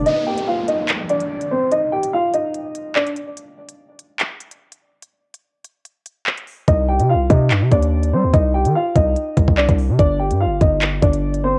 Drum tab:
HH |x--x--x-x-xx-x--|x--x--x-x-x--xx-|x--x--x-x-xx-x--|x--x--x-x-x--xo-|
CP |--------x-------|------------x---|--------x-------|------------x---|
BD |----------------|----------------|----------------|----------------|

HH |x--x--x-x-xx-x--|x--x--x-x-x--xo-|x--x--x-x-xx-x--|
CP |--------x-------|------------x---|--------x-------|
BD |o-----o---o-----|o-----o---oo-o--|o-----o---o-----|